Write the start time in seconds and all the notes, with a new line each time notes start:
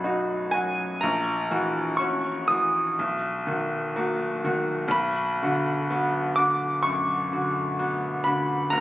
Already playing: F#2 F#3 F#4 B5
0.04 D#4 F#4
0.51 F#3 F#4 G#5
1.01 A#1 A#5
1.51 E3 F#4
1.97 C#4 F#4 C#6
2.48 E3 F#4 D#6
2.99 B1
3.47 D#3 F#4
3.96 A#3 F#4
4.44 D#3 F#4
4.88 B1 B5
5.43 D3 F#4
5.90 B3 F#4
6.36 D3 F#4 D6
6.83 F#2 C#6
7.32 D3 F#4
7.79 B3 F#4
8.24 D3 F#4 B5
8.70 F#1 A#5